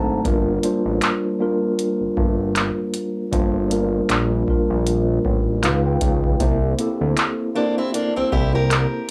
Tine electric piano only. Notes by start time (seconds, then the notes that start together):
Already playing: F#3 A3 C4 D4 A4 F#5 A#5
0.00 A5
0.24 G3 A#3 D4 F4 A#4
0.63 G3 A#3 D4 F4 C5
1.39 G3 A#3 D4 F4 A#4
3.32 G3 A#3 D4 F4 C5
3.70 G3 A#3 D4 F4 A#4
4.47 G3 A#3 D4 F4 A#4
5.62 G#3 C#4 D#4 F4 B4 F5
5.86 G5
6.39 A#3 C4 E4 G4 C5
6.78 A#3 C4 E4 G4 A4
7.55 A#3 C4 E4 G4 C5